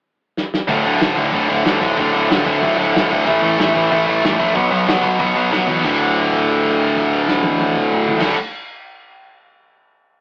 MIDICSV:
0, 0, Header, 1, 4, 480
1, 0, Start_track
1, 0, Key_signature, 2, "major"
1, 0, Tempo, 322234
1, 1023, Time_signature, 4, 2, 24, 8
1, 8225, Tempo, 318471
1, 15287, End_track
2, 0, Start_track
2, 0, Title_t, "Distorted electric guitar"
2, 0, Program_c, 0, 30
2, 1020, Note_on_c, 0, 38, 89
2, 1020, Note_on_c, 0, 45, 95
2, 1038, Note_on_c, 0, 50, 90
2, 1251, Note_off_c, 0, 50, 0
2, 1252, Note_off_c, 0, 45, 0
2, 1257, Note_on_c, 0, 50, 80
2, 1262, Note_off_c, 0, 38, 0
2, 1268, Note_on_c, 0, 38, 73
2, 1270, Note_on_c, 0, 45, 82
2, 1491, Note_off_c, 0, 45, 0
2, 1494, Note_off_c, 0, 38, 0
2, 1500, Note_on_c, 0, 38, 79
2, 1509, Note_on_c, 0, 45, 89
2, 1512, Note_off_c, 0, 50, 0
2, 1518, Note_on_c, 0, 50, 82
2, 1738, Note_off_c, 0, 45, 0
2, 1739, Note_off_c, 0, 50, 0
2, 1745, Note_on_c, 0, 50, 79
2, 1755, Note_on_c, 0, 45, 84
2, 1758, Note_off_c, 0, 38, 0
2, 1764, Note_on_c, 0, 38, 75
2, 1961, Note_off_c, 0, 38, 0
2, 1968, Note_off_c, 0, 45, 0
2, 1975, Note_off_c, 0, 50, 0
2, 1979, Note_on_c, 0, 38, 91
2, 1985, Note_on_c, 0, 45, 91
2, 1993, Note_on_c, 0, 50, 94
2, 2198, Note_off_c, 0, 50, 0
2, 2209, Note_off_c, 0, 45, 0
2, 2212, Note_off_c, 0, 38, 0
2, 2216, Note_on_c, 0, 50, 87
2, 2227, Note_on_c, 0, 45, 84
2, 2230, Note_on_c, 0, 38, 67
2, 2426, Note_off_c, 0, 38, 0
2, 2442, Note_off_c, 0, 45, 0
2, 2444, Note_off_c, 0, 50, 0
2, 2444, Note_on_c, 0, 38, 81
2, 2460, Note_on_c, 0, 45, 89
2, 2462, Note_on_c, 0, 50, 85
2, 2662, Note_off_c, 0, 50, 0
2, 2669, Note_off_c, 0, 45, 0
2, 2680, Note_on_c, 0, 50, 102
2, 2687, Note_off_c, 0, 38, 0
2, 2687, Note_on_c, 0, 45, 82
2, 2705, Note_on_c, 0, 38, 83
2, 2902, Note_off_c, 0, 45, 0
2, 2903, Note_off_c, 0, 38, 0
2, 2913, Note_off_c, 0, 50, 0
2, 2920, Note_on_c, 0, 45, 86
2, 2921, Note_on_c, 0, 38, 91
2, 2931, Note_on_c, 0, 50, 97
2, 3152, Note_off_c, 0, 50, 0
2, 3157, Note_off_c, 0, 45, 0
2, 3170, Note_on_c, 0, 50, 77
2, 3171, Note_off_c, 0, 38, 0
2, 3175, Note_on_c, 0, 45, 67
2, 3189, Note_on_c, 0, 38, 73
2, 3407, Note_off_c, 0, 38, 0
2, 3417, Note_off_c, 0, 45, 0
2, 3424, Note_on_c, 0, 38, 73
2, 3427, Note_off_c, 0, 50, 0
2, 3435, Note_on_c, 0, 45, 82
2, 3445, Note_on_c, 0, 50, 92
2, 3652, Note_off_c, 0, 50, 0
2, 3665, Note_off_c, 0, 38, 0
2, 3668, Note_off_c, 0, 45, 0
2, 3669, Note_on_c, 0, 50, 93
2, 3683, Note_on_c, 0, 38, 76
2, 3686, Note_on_c, 0, 45, 80
2, 3878, Note_off_c, 0, 38, 0
2, 3888, Note_off_c, 0, 45, 0
2, 3891, Note_off_c, 0, 50, 0
2, 3896, Note_on_c, 0, 38, 82
2, 3906, Note_on_c, 0, 45, 79
2, 3909, Note_on_c, 0, 50, 93
2, 4131, Note_off_c, 0, 50, 0
2, 4145, Note_off_c, 0, 45, 0
2, 4149, Note_on_c, 0, 50, 92
2, 4155, Note_off_c, 0, 38, 0
2, 4163, Note_on_c, 0, 45, 95
2, 4173, Note_on_c, 0, 38, 81
2, 4380, Note_off_c, 0, 38, 0
2, 4389, Note_off_c, 0, 45, 0
2, 4395, Note_off_c, 0, 50, 0
2, 4398, Note_on_c, 0, 38, 86
2, 4407, Note_on_c, 0, 45, 86
2, 4413, Note_on_c, 0, 50, 84
2, 4624, Note_off_c, 0, 50, 0
2, 4632, Note_off_c, 0, 45, 0
2, 4642, Note_on_c, 0, 50, 89
2, 4646, Note_off_c, 0, 38, 0
2, 4650, Note_on_c, 0, 45, 88
2, 4664, Note_on_c, 0, 38, 78
2, 4855, Note_off_c, 0, 45, 0
2, 4861, Note_off_c, 0, 50, 0
2, 4867, Note_off_c, 0, 38, 0
2, 4873, Note_on_c, 0, 45, 91
2, 4888, Note_on_c, 0, 52, 86
2, 4898, Note_on_c, 0, 57, 101
2, 5100, Note_off_c, 0, 57, 0
2, 5105, Note_off_c, 0, 52, 0
2, 5118, Note_on_c, 0, 57, 94
2, 5119, Note_off_c, 0, 45, 0
2, 5123, Note_on_c, 0, 52, 66
2, 5137, Note_on_c, 0, 45, 72
2, 5328, Note_off_c, 0, 45, 0
2, 5341, Note_off_c, 0, 52, 0
2, 5345, Note_on_c, 0, 45, 87
2, 5353, Note_off_c, 0, 57, 0
2, 5359, Note_on_c, 0, 52, 86
2, 5370, Note_on_c, 0, 57, 93
2, 5569, Note_off_c, 0, 57, 0
2, 5580, Note_off_c, 0, 52, 0
2, 5587, Note_on_c, 0, 57, 93
2, 5590, Note_off_c, 0, 45, 0
2, 5598, Note_on_c, 0, 52, 83
2, 5608, Note_on_c, 0, 45, 76
2, 5801, Note_off_c, 0, 45, 0
2, 5807, Note_off_c, 0, 52, 0
2, 5819, Note_off_c, 0, 57, 0
2, 5819, Note_on_c, 0, 45, 79
2, 5825, Note_on_c, 0, 52, 93
2, 5837, Note_on_c, 0, 57, 102
2, 6032, Note_off_c, 0, 57, 0
2, 6043, Note_off_c, 0, 52, 0
2, 6048, Note_off_c, 0, 45, 0
2, 6050, Note_on_c, 0, 57, 99
2, 6061, Note_on_c, 0, 52, 95
2, 6066, Note_on_c, 0, 45, 70
2, 6276, Note_off_c, 0, 45, 0
2, 6278, Note_off_c, 0, 52, 0
2, 6290, Note_off_c, 0, 57, 0
2, 6294, Note_on_c, 0, 45, 78
2, 6296, Note_on_c, 0, 52, 83
2, 6308, Note_on_c, 0, 57, 86
2, 6516, Note_off_c, 0, 57, 0
2, 6519, Note_off_c, 0, 45, 0
2, 6522, Note_off_c, 0, 52, 0
2, 6533, Note_on_c, 0, 57, 92
2, 6537, Note_on_c, 0, 45, 86
2, 6539, Note_on_c, 0, 52, 90
2, 6754, Note_off_c, 0, 45, 0
2, 6760, Note_on_c, 0, 47, 91
2, 6762, Note_off_c, 0, 52, 0
2, 6766, Note_off_c, 0, 57, 0
2, 6768, Note_on_c, 0, 54, 98
2, 6772, Note_on_c, 0, 59, 108
2, 6987, Note_off_c, 0, 59, 0
2, 6999, Note_off_c, 0, 54, 0
2, 7004, Note_on_c, 0, 59, 93
2, 7006, Note_off_c, 0, 47, 0
2, 7017, Note_on_c, 0, 54, 71
2, 7024, Note_on_c, 0, 47, 71
2, 7235, Note_off_c, 0, 47, 0
2, 7244, Note_off_c, 0, 54, 0
2, 7249, Note_off_c, 0, 59, 0
2, 7253, Note_on_c, 0, 47, 69
2, 7262, Note_on_c, 0, 54, 84
2, 7267, Note_on_c, 0, 59, 86
2, 7461, Note_off_c, 0, 59, 0
2, 7471, Note_off_c, 0, 47, 0
2, 7473, Note_off_c, 0, 54, 0
2, 7479, Note_on_c, 0, 59, 88
2, 7489, Note_on_c, 0, 47, 81
2, 7491, Note_on_c, 0, 54, 79
2, 7707, Note_off_c, 0, 47, 0
2, 7715, Note_off_c, 0, 54, 0
2, 7721, Note_off_c, 0, 59, 0
2, 7725, Note_on_c, 0, 47, 85
2, 7733, Note_on_c, 0, 54, 94
2, 7739, Note_on_c, 0, 59, 89
2, 7937, Note_off_c, 0, 59, 0
2, 7954, Note_off_c, 0, 54, 0
2, 7954, Note_on_c, 0, 59, 89
2, 7963, Note_off_c, 0, 47, 0
2, 7972, Note_on_c, 0, 54, 81
2, 7981, Note_on_c, 0, 47, 74
2, 8179, Note_off_c, 0, 47, 0
2, 8189, Note_off_c, 0, 54, 0
2, 8196, Note_off_c, 0, 59, 0
2, 8197, Note_on_c, 0, 47, 71
2, 8207, Note_on_c, 0, 54, 84
2, 8214, Note_on_c, 0, 59, 91
2, 8420, Note_off_c, 0, 59, 0
2, 8433, Note_off_c, 0, 54, 0
2, 8437, Note_off_c, 0, 47, 0
2, 8438, Note_on_c, 0, 59, 87
2, 8451, Note_on_c, 0, 54, 79
2, 8455, Note_on_c, 0, 47, 84
2, 8657, Note_off_c, 0, 47, 0
2, 8663, Note_on_c, 0, 38, 92
2, 8678, Note_off_c, 0, 59, 0
2, 8685, Note_off_c, 0, 54, 0
2, 8703, Note_on_c, 0, 45, 110
2, 8726, Note_on_c, 0, 50, 122
2, 12242, Note_off_c, 0, 38, 0
2, 12248, Note_on_c, 0, 38, 90
2, 12273, Note_off_c, 0, 45, 0
2, 12279, Note_on_c, 0, 45, 110
2, 12311, Note_off_c, 0, 50, 0
2, 12317, Note_on_c, 0, 50, 125
2, 12470, Note_off_c, 0, 38, 0
2, 12485, Note_off_c, 0, 45, 0
2, 12504, Note_off_c, 0, 50, 0
2, 15287, End_track
3, 0, Start_track
3, 0, Title_t, "Picked electric bass"
3, 0, Program_c, 1, 34
3, 1024, Note_on_c, 1, 26, 83
3, 1234, Note_off_c, 1, 26, 0
3, 1270, Note_on_c, 1, 26, 91
3, 1477, Note_off_c, 1, 26, 0
3, 1515, Note_on_c, 1, 26, 88
3, 1720, Note_off_c, 1, 26, 0
3, 1752, Note_on_c, 1, 26, 88
3, 1958, Note_off_c, 1, 26, 0
3, 1980, Note_on_c, 1, 26, 94
3, 2192, Note_off_c, 1, 26, 0
3, 2224, Note_on_c, 1, 26, 94
3, 2434, Note_off_c, 1, 26, 0
3, 2465, Note_on_c, 1, 26, 92
3, 2674, Note_off_c, 1, 26, 0
3, 2699, Note_on_c, 1, 26, 96
3, 2912, Note_off_c, 1, 26, 0
3, 2939, Note_on_c, 1, 26, 86
3, 3152, Note_off_c, 1, 26, 0
3, 3185, Note_on_c, 1, 26, 86
3, 3396, Note_off_c, 1, 26, 0
3, 3430, Note_on_c, 1, 26, 82
3, 3638, Note_off_c, 1, 26, 0
3, 3665, Note_on_c, 1, 26, 90
3, 3875, Note_off_c, 1, 26, 0
3, 3909, Note_on_c, 1, 26, 92
3, 4118, Note_off_c, 1, 26, 0
3, 4152, Note_on_c, 1, 26, 85
3, 4360, Note_off_c, 1, 26, 0
3, 4392, Note_on_c, 1, 26, 85
3, 4600, Note_off_c, 1, 26, 0
3, 4636, Note_on_c, 1, 26, 95
3, 4843, Note_off_c, 1, 26, 0
3, 4869, Note_on_c, 1, 33, 87
3, 5079, Note_off_c, 1, 33, 0
3, 5093, Note_on_c, 1, 33, 101
3, 5310, Note_off_c, 1, 33, 0
3, 5337, Note_on_c, 1, 33, 91
3, 5552, Note_off_c, 1, 33, 0
3, 5592, Note_on_c, 1, 33, 100
3, 5801, Note_off_c, 1, 33, 0
3, 5842, Note_on_c, 1, 33, 86
3, 6046, Note_off_c, 1, 33, 0
3, 6083, Note_on_c, 1, 33, 96
3, 6287, Note_off_c, 1, 33, 0
3, 6327, Note_on_c, 1, 33, 91
3, 6529, Note_off_c, 1, 33, 0
3, 6542, Note_on_c, 1, 34, 88
3, 6755, Note_off_c, 1, 34, 0
3, 6787, Note_on_c, 1, 35, 101
3, 6997, Note_off_c, 1, 35, 0
3, 7024, Note_on_c, 1, 35, 100
3, 7235, Note_off_c, 1, 35, 0
3, 7266, Note_on_c, 1, 35, 92
3, 7476, Note_off_c, 1, 35, 0
3, 7499, Note_on_c, 1, 35, 81
3, 7712, Note_off_c, 1, 35, 0
3, 7741, Note_on_c, 1, 35, 82
3, 7952, Note_off_c, 1, 35, 0
3, 7983, Note_on_c, 1, 35, 84
3, 8193, Note_off_c, 1, 35, 0
3, 8210, Note_on_c, 1, 35, 81
3, 8427, Note_off_c, 1, 35, 0
3, 8466, Note_on_c, 1, 40, 85
3, 8677, Note_off_c, 1, 40, 0
3, 8702, Note_on_c, 1, 26, 93
3, 12139, Note_off_c, 1, 26, 0
3, 12274, Note_on_c, 1, 26, 85
3, 12468, Note_off_c, 1, 26, 0
3, 15287, End_track
4, 0, Start_track
4, 0, Title_t, "Drums"
4, 557, Note_on_c, 9, 38, 64
4, 706, Note_off_c, 9, 38, 0
4, 801, Note_on_c, 9, 38, 82
4, 950, Note_off_c, 9, 38, 0
4, 1024, Note_on_c, 9, 46, 79
4, 1027, Note_on_c, 9, 36, 111
4, 1173, Note_off_c, 9, 46, 0
4, 1176, Note_off_c, 9, 36, 0
4, 1262, Note_on_c, 9, 46, 54
4, 1411, Note_off_c, 9, 46, 0
4, 1497, Note_on_c, 9, 46, 100
4, 1511, Note_on_c, 9, 38, 127
4, 1646, Note_off_c, 9, 46, 0
4, 1660, Note_off_c, 9, 38, 0
4, 1745, Note_on_c, 9, 36, 90
4, 1746, Note_on_c, 9, 46, 59
4, 1894, Note_off_c, 9, 36, 0
4, 1895, Note_off_c, 9, 46, 0
4, 1983, Note_on_c, 9, 36, 104
4, 1986, Note_on_c, 9, 46, 74
4, 2131, Note_off_c, 9, 36, 0
4, 2135, Note_off_c, 9, 46, 0
4, 2218, Note_on_c, 9, 46, 60
4, 2367, Note_off_c, 9, 46, 0
4, 2457, Note_on_c, 9, 46, 85
4, 2471, Note_on_c, 9, 38, 102
4, 2606, Note_off_c, 9, 46, 0
4, 2619, Note_off_c, 9, 38, 0
4, 2701, Note_on_c, 9, 36, 99
4, 2701, Note_on_c, 9, 46, 71
4, 2850, Note_off_c, 9, 36, 0
4, 2850, Note_off_c, 9, 46, 0
4, 2932, Note_on_c, 9, 46, 81
4, 2940, Note_on_c, 9, 36, 103
4, 3081, Note_off_c, 9, 46, 0
4, 3089, Note_off_c, 9, 36, 0
4, 3191, Note_on_c, 9, 46, 51
4, 3340, Note_off_c, 9, 46, 0
4, 3428, Note_on_c, 9, 46, 93
4, 3442, Note_on_c, 9, 38, 117
4, 3577, Note_off_c, 9, 46, 0
4, 3591, Note_off_c, 9, 38, 0
4, 3664, Note_on_c, 9, 46, 59
4, 3667, Note_on_c, 9, 36, 92
4, 3813, Note_off_c, 9, 46, 0
4, 3815, Note_off_c, 9, 36, 0
4, 3912, Note_on_c, 9, 36, 97
4, 3919, Note_on_c, 9, 46, 71
4, 4061, Note_off_c, 9, 36, 0
4, 4068, Note_off_c, 9, 46, 0
4, 4158, Note_on_c, 9, 46, 57
4, 4307, Note_off_c, 9, 46, 0
4, 4401, Note_on_c, 9, 46, 82
4, 4414, Note_on_c, 9, 38, 115
4, 4550, Note_off_c, 9, 46, 0
4, 4563, Note_off_c, 9, 38, 0
4, 4635, Note_on_c, 9, 36, 89
4, 4638, Note_on_c, 9, 46, 60
4, 4784, Note_off_c, 9, 36, 0
4, 4787, Note_off_c, 9, 46, 0
4, 4873, Note_on_c, 9, 46, 87
4, 4876, Note_on_c, 9, 36, 117
4, 5022, Note_off_c, 9, 46, 0
4, 5025, Note_off_c, 9, 36, 0
4, 5116, Note_on_c, 9, 46, 54
4, 5265, Note_off_c, 9, 46, 0
4, 5351, Note_on_c, 9, 46, 86
4, 5365, Note_on_c, 9, 38, 127
4, 5500, Note_off_c, 9, 46, 0
4, 5514, Note_off_c, 9, 38, 0
4, 5593, Note_on_c, 9, 46, 64
4, 5594, Note_on_c, 9, 36, 97
4, 5742, Note_off_c, 9, 46, 0
4, 5743, Note_off_c, 9, 36, 0
4, 5836, Note_on_c, 9, 36, 115
4, 5837, Note_on_c, 9, 46, 78
4, 5985, Note_off_c, 9, 36, 0
4, 5986, Note_off_c, 9, 46, 0
4, 6080, Note_on_c, 9, 46, 51
4, 6229, Note_off_c, 9, 46, 0
4, 6314, Note_on_c, 9, 46, 80
4, 6327, Note_on_c, 9, 38, 123
4, 6462, Note_off_c, 9, 46, 0
4, 6476, Note_off_c, 9, 38, 0
4, 6551, Note_on_c, 9, 36, 88
4, 6551, Note_on_c, 9, 46, 65
4, 6700, Note_off_c, 9, 36, 0
4, 6700, Note_off_c, 9, 46, 0
4, 6776, Note_on_c, 9, 46, 86
4, 6787, Note_on_c, 9, 36, 119
4, 6925, Note_off_c, 9, 46, 0
4, 6936, Note_off_c, 9, 36, 0
4, 7025, Note_on_c, 9, 46, 48
4, 7174, Note_off_c, 9, 46, 0
4, 7265, Note_on_c, 9, 46, 102
4, 7279, Note_on_c, 9, 38, 127
4, 7414, Note_off_c, 9, 46, 0
4, 7428, Note_off_c, 9, 38, 0
4, 7504, Note_on_c, 9, 36, 86
4, 7504, Note_on_c, 9, 46, 61
4, 7653, Note_off_c, 9, 36, 0
4, 7653, Note_off_c, 9, 46, 0
4, 7743, Note_on_c, 9, 46, 70
4, 7744, Note_on_c, 9, 36, 110
4, 7892, Note_off_c, 9, 46, 0
4, 7893, Note_off_c, 9, 36, 0
4, 7983, Note_on_c, 9, 46, 53
4, 8132, Note_off_c, 9, 46, 0
4, 8231, Note_on_c, 9, 38, 62
4, 8382, Note_off_c, 9, 38, 0
4, 8456, Note_on_c, 9, 43, 100
4, 8607, Note_off_c, 9, 43, 0
4, 8705, Note_on_c, 9, 49, 94
4, 8708, Note_on_c, 9, 36, 104
4, 8856, Note_off_c, 9, 49, 0
4, 8858, Note_off_c, 9, 36, 0
4, 8949, Note_on_c, 9, 36, 59
4, 8954, Note_on_c, 9, 49, 40
4, 9100, Note_off_c, 9, 36, 0
4, 9105, Note_off_c, 9, 49, 0
4, 9186, Note_on_c, 9, 57, 55
4, 9336, Note_off_c, 9, 57, 0
4, 9424, Note_on_c, 9, 49, 47
4, 9429, Note_on_c, 9, 36, 59
4, 9574, Note_off_c, 9, 49, 0
4, 9580, Note_off_c, 9, 36, 0
4, 9677, Note_on_c, 9, 57, 48
4, 9828, Note_off_c, 9, 57, 0
4, 9915, Note_on_c, 9, 36, 61
4, 9922, Note_on_c, 9, 49, 47
4, 10066, Note_off_c, 9, 36, 0
4, 10073, Note_off_c, 9, 49, 0
4, 10161, Note_on_c, 9, 57, 49
4, 10312, Note_off_c, 9, 57, 0
4, 10399, Note_on_c, 9, 36, 72
4, 10405, Note_on_c, 9, 49, 53
4, 10550, Note_off_c, 9, 36, 0
4, 10556, Note_off_c, 9, 49, 0
4, 10636, Note_on_c, 9, 57, 60
4, 10786, Note_off_c, 9, 57, 0
4, 10877, Note_on_c, 9, 38, 78
4, 11028, Note_off_c, 9, 38, 0
4, 11099, Note_on_c, 9, 48, 117
4, 11249, Note_off_c, 9, 48, 0
4, 11355, Note_on_c, 9, 48, 98
4, 11506, Note_off_c, 9, 48, 0
4, 11586, Note_on_c, 9, 47, 88
4, 11737, Note_off_c, 9, 47, 0
4, 11827, Note_on_c, 9, 45, 82
4, 11978, Note_off_c, 9, 45, 0
4, 12075, Note_on_c, 9, 43, 103
4, 12225, Note_off_c, 9, 43, 0
4, 12267, Note_on_c, 9, 49, 109
4, 12271, Note_on_c, 9, 36, 109
4, 12281, Note_on_c, 9, 38, 94
4, 12418, Note_off_c, 9, 49, 0
4, 12422, Note_off_c, 9, 36, 0
4, 12432, Note_off_c, 9, 38, 0
4, 15287, End_track
0, 0, End_of_file